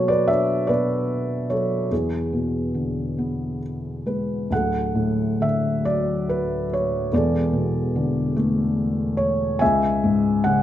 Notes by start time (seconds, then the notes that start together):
Already playing: B2 F#3 F#4 A4 C#5
0.08 B4 D5
0.28 D4 C#5 E5
0.67 B2 B4 D5
1.50 F#3 A4 C#5
1.91 E2 E4 G#4
2.33 B2
2.74 D3
3.18 B3
4.06 G#3 B4
4.50 D1 D2 A4 F#5
4.95 A2
5.41 D3 E5
5.85 F#3 D5
6.29 B4
6.73 C#5
7.12 E1 E2 A4 D5
7.53 B2
7.96 D3
8.36 A3
9.17 C#5
9.59 C#2 E5 G#5
10.04 G#2
10.44 C#3 F#5